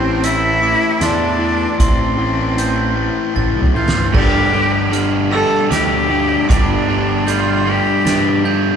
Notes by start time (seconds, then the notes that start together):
Already playing: A1 A2 E3 A3 C4 G4 C5 E5 A5 G6
0.23 A2 E3 A3 E4 E6, closed hi-hat
0.61 A2 E3 A3 D6
1.00 E2 A2 E3 A3 D4 C6, snare, closed hi-hat
1.39 A2 E3 A3
1.78 A1 A2 E3 A3 C4 D5 C6, kick, closed hi-hat
2.17 A2 E3 A3
2.56 A2 E3 A3 G6, closed hi-hat
2.95 A2 E3 A3
3.34 A1 A2 E3 A3 A6, kick
3.56 B1
3.62 mid tom
3.74 A1 A2 E3 A3 F4 G6
3.88 snare
3.96 G1
4.13 G1 G2 D3 G3 A3 D4 G4 A4 A6, kick, splash, crash
4.53 G2 D3 G3 A3 D4 G4
4.90 G2 D3 G3 A3 D4 G4 F6, closed hi-hat
5.31 G2 D3 G3 A3 D4 G4 A4 E6
5.69 D2 G2 D3 G3 A3 D4 G4 D6, snare, closed hi-hat
6.09 G2 D3 G3 A3 D4 G4
6.48 G1 G2 D3 G3 A3 D4 G4 D6, kick, closed hi-hat
6.88 G2 D3 G3 A3 D4 G4
7.27 G2 D3 G3 A3 D4 F4 G4 G6, closed hi-hat
7.66 G2 D3 G3 A3 D4 G4
8.05 G2 D3 G3 A3 D4 G4 A6, snare, closed hi-hat
8.44 G2 D3 G3 A3 D4 G4 G6